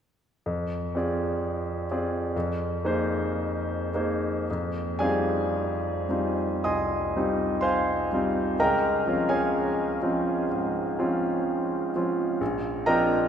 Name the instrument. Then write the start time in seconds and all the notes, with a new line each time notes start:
grand piano
0.46 F2
0.95 C4 F4 G#4 D5
1.91 C4 F4 G#4 D5
2.36 F2
2.85 A#3 D#4 G#4 C5
3.94 A#3 D#4 G#4 C5
4.51 F2
4.99 G3 C4 D#4 F4 G#4 D5 F5 G#5
6.09 G3 C4 D#4 F4
6.64 C2 D#5 G#5 C6 D#6
7.17 G3 C4 D#4 F4
7.61 C5 F5 G#5 C6
8.13 G3 C4 D#4 F4
8.60 C#2 A#4 D#5 G5 A#5
9.07 F3 C4 C#4 F4
9.29 G#4 C#5 F5 G#5
10.02 F3 C4 C#4 F4
10.51 G#2
10.99 F3 C4 C#4 F4
11.96 F3 C4 C#4 F4
12.41 A#1
12.86 F3 C4 D4 F4 A#4 D#5 G5 A#5